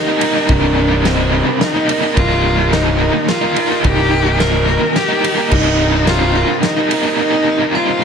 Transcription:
Already playing: cello D#4, ambient pad G4 C5 A#5 D#6, vibraphone A#4
0.07 overdriven electric guitar C3 G3 A#3 D#4
0.21 overdriven electric guitar C3 G3 A#3 D#4, vibraphone A#4, ride
0.35 overdriven electric guitar C2 G2 C3 G3 A#3 D#4
0.49 fingered electric bass C1, overdriven electric guitar C2 G2 C3 G3 A#3 D#4, cello D4, kick, ride
0.90 overdriven electric guitar C3 G3 A#3 D#4
1.04 overdriven electric guitar C2 G2 C3 G3 A#3 D#4, cello C4, vibraphone C5, snare, ride
1.32 overdriven electric guitar C3 G3 A#3 D#4, vibraphone A#4
1.46 muted overdriven electric guitar stroke
1.60 cello D#4, snare, ride
1.74 overdriven electric guitar C3 G3 A#3 D#4
1.88 overdriven electric guitar C3 G3 A#3 D#4, vibraphone A#4, ride
2.02 overdriven electric guitar C2 G2 C3 G3 A#3 D#4
2.15 fingered electric bass C1, overdriven electric guitar D#2 A#2 D#3 G3 A#3 D#4, cello F4, ambient pad G4 D#5, vibraphone A#4, kick, ride
2.57 overdriven electric guitar D#3 G3 A#3 D#4
2.71 overdriven electric guitar D#2 A#2 D#3 G3 A#3 D#4, cello D#4, vibraphone C5, snare, ride
2.99 overdriven electric guitar D#3 G3 A#3 D#4, vibraphone A#4
3.14 muted overdriven electric guitar stroke
3.27 cello F4, snare, ride
3.41 overdriven electric guitar D#3 G3 A#3 D#4
3.56 overdriven electric guitar D#3 G3 A#3 D#4, vibraphone A#4, ride
3.70 overdriven electric guitar D#2 A#2 D#3 G3 A#3 D#4
3.83 fingered electric bass C1, overdriven electric guitar D#2 A#2 D#3 G3 A#3 D#4, cello G4, vibraphone A#4, kick, ride
4.25 overdriven electric guitar D#3 G3 A#3 D#4
4.39 overdriven electric guitar D#2 A#2 D#3 G3 A#3 D#4, cello A#4, vibraphone C5, snare, ride
4.67 overdriven electric guitar D#3 G3 A#3 D#4, vibraphone A#4
4.82 muted overdriven electric guitar stroke
4.95 cello G4, snare, ride
5.09 overdriven electric guitar D#3 G3 A#3 D#4
5.23 overdriven electric guitar D#3 G3 A#3 D#4, vibraphone A#4, ride
5.37 overdriven electric guitar D#2 A#2 D#3 G3 A#3 D#4
5.50 fingered electric bass C1, overdriven electric guitar C2 G2 C3 G3 A#3 D#4, cello D#4, vibraphone A#4, ambient pad C5, kick, crash
5.93 overdriven electric guitar C3 G3 A#3 D#4
6.07 overdriven electric guitar C2 G2 C3 G3 A#3 D#4, cello F4, vibraphone C5, snare, ride
6.34 overdriven electric guitar C3 G3 A#3 D#4, vibraphone A#4
6.49 muted overdriven electric guitar stroke
6.62 cello D#4, snare, ride
6.76 overdriven electric guitar C3 G3 A#3 D#4
6.91 overdriven electric guitar C3 G3 A#3 D#4, vibraphone A#4, ride
7.05 overdriven electric guitar C2 G2 C3 G3 A#3 D#4
7.17 overdriven electric guitar C2 G2 C3 G3 A#3 D#4, cello D#4, vibraphone A#4
7.60 overdriven electric guitar C3 G3 A#3 D#4
7.74 overdriven electric guitar C2 G2 C3 G3 A#3 D#4, cello F4, vibraphone C5

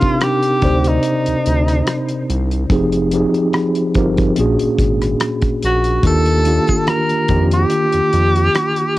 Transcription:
Already playing: tine electric piano C3 C4 D4 D#4 G4 A#4, tenor saxophone F4
0.01 kick, closed hi-hat
0.21 tenor saxophone G4, cross-stick, closed hi-hat
0.42 closed hi-hat
0.62 analog synth bass D2, tine electric piano C3 C4 D#4 C5 D5, kick, closed hi-hat
0.84 tenor saxophone D#4, closed hi-hat
1.03 closed hi-hat
1.26 analog synth bass D2, closed hi-hat
1.46 analog synth bass D2, closed hi-hat
1.68 cross-stick, closed hi-hat
1.87 cross-stick, closed hi-hat
2.08 closed hi-hat
2.30 analog synth bass C2, closed hi-hat
2.51 closed hi-hat
2.70 analog synth bass F1, tine electric piano F3 C4 D#4 G4 G#4, kick, closed hi-hat
2.92 closed hi-hat
3.11 tine electric piano F3 C4 D#4 G4 G#4, closed hi-hat
3.34 closed hi-hat
3.53 cross-stick, closed hi-hat
3.75 closed hi-hat
3.95 analog synth bass G1, tine electric piano F3 C4 D#4 G4 A#4, kick, closed hi-hat
4.17 kick, closed hi-hat
4.36 analog synth bass A#1, tine electric piano A#2 A#3 C#4 D4 F#4 G#4, closed hi-hat
4.59 analog synth bass G#1, closed hi-hat
4.79 analog synth bass G#1, kick, closed hi-hat
5.02 cross-stick, closed hi-hat
5.20 cross-stick, closed hi-hat
5.42 kick, closed hi-hat
5.63 analog synth bass A#1, tenor saxophone F#4, closed hi-hat
5.84 closed hi-hat
6.03 analog synth bass D#2, tine electric piano D#3 A#3 D4 F4 G4, tenor saxophone A4, kick, closed hi-hat
6.26 closed hi-hat
6.45 tine electric piano D#3 A#3 D4 F4 G4, closed hi-hat
6.68 kick, closed hi-hat
6.87 tenor saxophone A#4, cross-stick, closed hi-hat
7.09 closed hi-hat
7.28 analog synth bass F2, tine electric piano D#3 A#3 D4 F4 G4, kick, closed hi-hat
7.51 tenor saxophone G4, closed hi-hat
7.70 closed hi-hat
7.93 analog synth bass F2, closed hi-hat
8.13 analog synth bass F2, closed hi-hat
8.36 closed hi-hat
8.55 cross-stick, closed hi-hat
8.76 closed hi-hat

